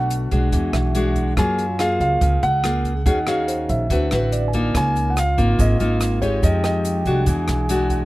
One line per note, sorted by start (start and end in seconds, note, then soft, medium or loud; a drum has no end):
0.00 0.28 B1 medium
0.00 0.51 B2 medium
0.00 0.29 A3 medium
0.00 0.29 D4 medium
0.00 0.30 F#4 medium
0.00 0.49 F#4 loud
0.00 0.70 F#5 medium
0.10 closed hi-hat soft
0.31 0.52 B1 medium
0.31 0.92 G#3 soft
0.31 0.92 D4 medium
0.31 0.92 F#4 medium
0.31 kick soft
0.31 closed hi-hat soft
0.52 0.72 E2 medium
0.52 1.35 E3 medium
0.52 1.33 F#4 medium
0.52 kick medium
0.52 closed hi-hat soft
0.73 1.33 B1 medium
0.73 1.33 E5 soft
0.73 cross-stick medium
0.73 closed hi-hat soft
0.95 1.34 G#3 medium
0.95 1.34 D4 medium
0.95 1.34 F#4 medium
0.95 closed hi-hat soft
1.16 kick soft
1.16 closed hi-hat soft
1.37 1.96 F#2 medium
1.37 2.19 F#3 medium
1.37 1.64 A#3 medium
1.37 2.74 F4 loud
1.37 1.65 F4 medium
1.37 1.65 G#4 medium
1.37 1.81 G#5 medium
1.37 kick medium
1.37 cross-stick medium
1.37 closed hi-hat soft
1.58 closed hi-hat soft
1.79 2.36 A#3 soft
1.79 2.36 F4 medium
1.79 2.37 G#4 medium
1.79 2.00 F5 medium
1.79 cross-stick medium
1.79 closed hi-hat soft
2.00 2.20 C#2 medium
2.00 2.40 F5 medium
2.00 kick soft
2.00 closed hi-hat soft
2.21 2.41 C#2 medium
2.21 3.04 C#3 medium
2.21 kick medium
2.21 closed hi-hat soft
2.43 3.02 C#2 medium
2.43 3.05 F#5 loud
2.43 closed hi-hat soft
2.63 2.92 A#3 soft
2.63 2.92 F4 soft
2.63 2.92 G#4 medium
2.63 cross-stick medium
2.63 closed hi-hat soft
2.85 kick soft
2.85 closed hi-hat soft
3.06 3.65 D#2 medium
3.06 3.88 D#3 medium
3.06 3.18 C#4 medium
3.06 3.92 D#4 medium
3.06 3.18 F#4 medium
3.06 3.19 G#4 medium
3.06 3.26 F#5 medium
3.06 kick medium
3.06 closed hi-hat soft
3.27 3.89 C#4 medium
3.27 3.89 F#4 medium
3.27 3.89 G#4 medium
3.27 3.71 F5 medium
3.27 cross-stick medium
3.27 closed hi-hat soft
3.48 4.07 C5 soft
3.48 closed hi-hat soft
3.69 3.89 A#1 medium
3.69 4.28 E5 medium
3.69 kick soft
3.69 closed hi-hat soft
3.90 4.10 D2 loud
3.90 4.72 D3 medium
3.90 4.08 C4 medium
3.90 4.54 E4 medium
3.90 4.08 F#4 medium
3.90 4.09 B4 medium
3.90 kick medium
3.90 closed hi-hat soft
4.11 4.71 A1 medium
4.11 4.50 C4 medium
4.11 4.50 F#4 medium
4.11 4.51 B4 medium
4.11 cross-stick medium
4.11 closed hi-hat soft
4.32 4.72 D5 soft
4.32 closed hi-hat soft
4.48 5.05 G#5 soft
4.53 5.13 A#3 medium
4.53 5.14 D#4 medium
4.53 5.14 F4 medium
4.53 kick soft
4.53 closed hi-hat soft
4.74 5.34 C#2 medium
4.74 5.56 C#3 medium
4.74 6.45 F4 loud
4.74 5.12 G#5 loud
4.74 kick medium
4.74 cross-stick medium
4.74 closed hi-hat soft
4.74 shaker medium
4.96 closed hi-hat soft
4.96 shaker soft
5.10 5.17 F#5 medium
5.17 5.61 F5 medium
5.17 cross-stick medium
5.17 closed hi-hat soft
5.17 shaker medium
5.38 5.57 G#1 medium
5.38 5.76 A#3 medium
5.38 5.77 D#4 medium
5.38 5.77 F4 medium
5.38 kick soft
5.38 closed hi-hat soft
5.38 shaker soft
5.59 5.78 G#1 loud
5.59 6.21 G#3 medium
5.59 5.99 D#5 medium
5.59 kick medium
5.59 closed hi-hat soft
5.59 shaker medium
5.80 6.39 G#1 medium
5.80 6.19 A#3 medium
5.80 6.19 D#4 medium
5.80 6.19 F4 medium
5.80 closed hi-hat soft
5.80 shaker soft
6.01 cross-stick medium
6.01 closed hi-hat soft
6.01 shaker medium
6.22 7.03 G#3 medium
6.22 7.03 D#4 medium
6.22 7.03 G4 medium
6.22 6.43 C#5 medium
6.22 kick soft
6.22 closed hi-hat soft
6.22 shaker soft
6.43 7.02 F2 medium
6.43 7.25 F3 medium
6.43 7.29 G4 loud
6.43 6.62 D#5 medium
6.43 kick medium
6.43 closed hi-hat soft
6.43 shaker medium
6.64 7.23 D#5 medium
6.64 7.23 G5 soft
6.64 cross-stick medium
6.64 closed hi-hat soft
6.64 shaker soft
6.85 closed hi-hat soft
6.85 shaker medium
7.06 7.26 C2 medium
7.06 7.66 G#3 medium
7.06 7.66 D4 medium
7.06 7.66 F#4 medium
7.06 kick soft
7.06 closed hi-hat soft
7.06 shaker soft
7.26 7.46 E2 medium
7.26 8.05 E3 medium
7.26 8.05 G#4 loud
7.26 kick medium
7.26 closed hi-hat soft
7.26 shaker medium
7.48 8.05 B1 medium
7.48 cross-stick medium
7.48 closed hi-hat soft
7.48 shaker soft
7.69 8.05 G#3 medium
7.69 8.05 D4 medium
7.69 8.05 F#4 medium
7.69 closed hi-hat soft
7.69 shaker medium
7.90 8.05 F#5 soft
7.90 kick soft
7.90 closed hi-hat soft
7.90 shaker soft